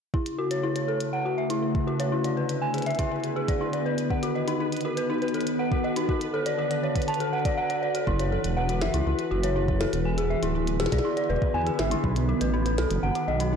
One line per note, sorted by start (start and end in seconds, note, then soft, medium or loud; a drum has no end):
0.14 2.12 C#3 medium
0.14 0.22 E4 medium
0.14 13.56 B4 medium
0.14 kick medium
0.26 2.12 A3 medium
0.26 closed hi-hat soft
0.38 0.50 F#4 medium
0.51 0.63 C#5 medium
0.51 closed hi-hat medium
0.63 0.68 E4 medium
0.71 4.10 E4 medium
0.76 0.87 C#5 medium
0.76 closed hi-hat soft
0.88 0.93 A4 medium
1.00 2.91 F#4 medium
1.00 closed hi-hat medium
1.13 1.25 F#5 medium
1.25 1.37 F#4 medium
1.38 1.46 E5 medium
1.50 1.61 E4 medium
1.50 closed hi-hat medium
1.62 1.71 E4 medium
1.75 kick medium
1.87 1.99 F#4 medium
2.00 2.11 C#5 medium
2.00 closed hi-hat medium
2.12 4.10 D3 medium
2.12 2.17 E4 medium
2.24 2.36 D5 medium
2.24 closed hi-hat soft
2.37 2.42 B4 medium
2.49 4.10 G#4 medium
2.49 closed hi-hat medium
2.54 6.88 B3 medium
2.62 2.73 G#5 medium
2.74 2.86 G#4 medium
2.74 closed hi-hat soft
2.78 closed hi-hat soft
2.82 closed hi-hat soft
2.86 2.95 E5 medium
2.86 closed hi-hat soft
2.91 closed hi-hat soft
2.95 closed hi-hat soft
2.99 3.10 E4 medium
2.99 kick medium
2.99 closed hi-hat medium
3.11 3.19 E4 medium
3.24 closed hi-hat soft
3.36 3.48 G#4 medium
3.48 3.60 D5 medium
3.48 kick loud
3.48 closed hi-hat medium
3.61 3.66 E4 medium
3.73 3.85 D5 medium
3.73 closed hi-hat soft
3.86 3.90 B4 medium
3.98 closed hi-hat medium
4.10 6.09 D#3 medium
4.10 4.22 F#5 medium
4.10 kick medium
4.23 4.35 F#4 medium
4.23 closed hi-hat soft
4.35 4.43 D#5 medium
4.48 4.59 D#4 medium
4.48 closed hi-hat medium
4.60 4.68 D#4 medium
4.72 closed hi-hat soft
4.77 10.06 A4 medium
4.77 closed hi-hat soft
4.81 10.85 F#4 medium
4.81 closed hi-hat soft
4.85 4.97 F#4 loud
4.97 5.09 B4 medium
4.97 closed hi-hat medium
5.10 5.14 D#4 medium
5.22 5.34 B4 medium
5.22 closed hi-hat soft
5.28 closed hi-hat soft
5.34 5.39 A4 medium
5.34 closed hi-hat soft
5.41 closed hi-hat soft
5.47 closed hi-hat medium
5.59 5.71 F#5 medium
5.72 5.83 F#4 medium
5.72 kick loud
5.84 5.92 D#5 medium
5.96 6.08 D#4 medium
5.96 closed hi-hat medium
6.09 8.07 D3 medium
6.09 6.17 F#4 medium
6.09 kick medium
6.21 closed hi-hat soft
6.34 6.45 A4 medium
6.46 6.58 D5 medium
6.46 closed hi-hat medium
6.58 6.63 F#4 medium
6.71 6.83 D5 medium
6.71 closed hi-hat soft
6.83 6.88 C#5 medium
6.96 kick medium
6.96 closed hi-hat medium
7.02 closed hi-hat soft
7.08 7.20 A5 medium
7.08 closed hi-hat soft
7.14 closed hi-hat soft
7.20 7.32 A4 medium
7.20 closed hi-hat soft
7.33 7.45 F#5 medium
7.45 7.50 D5 medium
7.45 kick loud
7.45 closed hi-hat medium
7.57 7.69 F#5 medium
7.70 7.81 D5 medium
7.70 closed hi-hat soft
7.82 7.94 D5 medium
7.95 8.03 A4 medium
7.95 closed hi-hat medium
8.07 8.37 F#1 medium
8.07 10.05 E3 medium
8.07 8.12 E4 medium
8.07 kick medium
8.19 8.31 C#5 medium
8.19 closed hi-hat soft
8.32 8.37 A4 medium
8.44 8.83 E1 medium
8.44 closed hi-hat medium
8.57 8.68 F#5 medium
8.69 8.81 F#4 medium
8.69 closed hi-hat soft
8.81 8.90 F#1 medium
8.81 8.90 E5 medium
8.81 snare loud
8.94 9.02 C#2 medium
8.94 9.05 E4 medium
8.94 closed hi-hat medium
9.06 9.14 C#2 medium
9.06 9.14 E4 medium
9.19 closed hi-hat soft
9.31 9.86 F#1 medium
9.31 9.43 F#4 medium
9.43 9.55 C#5 medium
9.43 closed hi-hat medium
9.56 9.61 E4 medium
9.68 9.80 C#5 medium
9.68 kick loud
9.81 9.86 A4 medium
9.81 snare loud
9.93 10.36 E1 medium
9.93 closed hi-hat medium
10.05 12.04 D3 medium
10.05 10.17 G#5 medium
10.18 12.04 E4 medium
10.18 10.30 G#4 medium
10.18 closed hi-hat soft
10.30 10.38 E5 medium
10.42 10.81 D1 medium
10.42 13.56 B3 medium
10.42 10.54 E4 loud
10.42 closed hi-hat medium
10.55 10.63 E4 medium
10.67 closed hi-hat soft
10.80 10.88 E1 medium
10.80 10.92 G#4 medium
10.80 snare loud
10.86 snare medium
10.92 11.00 B1 medium
10.92 11.04 D5 medium
10.92 kick medium
10.92 snare medium
10.92 closed hi-hat medium
10.98 snare medium
11.05 11.09 E4 medium
11.17 11.29 D5 medium
11.17 closed hi-hat soft
11.29 11.38 E1 medium
11.29 11.34 B4 medium
11.42 kick loud
11.54 11.70 E2 loud
11.54 11.66 G#5 medium
11.67 11.78 G#4 medium
11.67 closed hi-hat soft
11.79 11.95 G#1 medium
11.79 11.87 E5 medium
11.79 snare loud
11.91 12.03 E4 loud
11.91 closed hi-hat medium
12.04 12.34 B1 loud
12.04 13.56 D#3 medium
12.04 12.12 D#4 medium
12.04 kick medium
12.16 closed hi-hat soft
12.29 12.40 F#4 medium
12.41 12.80 A1 medium
12.41 12.53 B4 medium
12.41 closed hi-hat medium
12.46 13.56 F#4 medium
12.53 12.58 D#4 medium
12.66 13.56 A4 medium
12.66 12.78 B4 medium
12.66 closed hi-hat soft
12.78 12.86 B1 loud
12.78 12.83 A4 medium
12.78 snare loud
12.91 12.99 F#1 medium
12.91 closed hi-hat medium
13.03 13.11 F#1 medium
13.03 13.15 F#5 medium
13.15 13.27 F#4 medium
13.15 closed hi-hat soft
13.28 13.56 B1 medium
13.28 13.36 D#5 medium
13.40 13.51 D#4 medium
13.40 closed hi-hat medium
13.53 13.56 D#4 medium